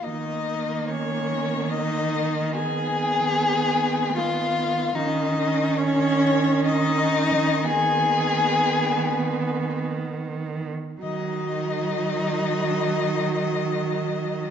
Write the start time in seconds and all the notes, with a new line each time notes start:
0.03 D#3 A#3 D#4 D#5
0.88 C#4 C#5
1.70 D#4 D#5
2.55 B3 G#4 G#5
4.16 F4 F5
4.95 D#3 C#4 D#4 D#5
5.77 C#4 C#5
6.65 D#4 D#5
7.64 B3 G#4 G#5
11.01 D#3 F#3 D#4 D#5